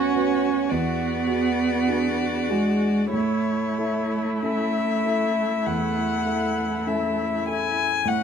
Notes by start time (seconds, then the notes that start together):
Already playing: D2 B3 C#4 F#4 B4 C#5
0.15 F#4 B4
0.70 E2 B3 F#4 D5
1.27 F#4 G#4
1.87 D4 F#4 G#4
2.49 G#3 F#4 G#4
3.13 A2 A3 E4 C#5
3.78 E4 A4
4.42 C#4 E4 A4 E5
5.05 E4 A4
5.66 E2 F#5
6.26 E4 A4
6.87 C#4 E4 A4 E5
7.48 E4 A4 G#5
8.05 A2 A3 C#4 F#5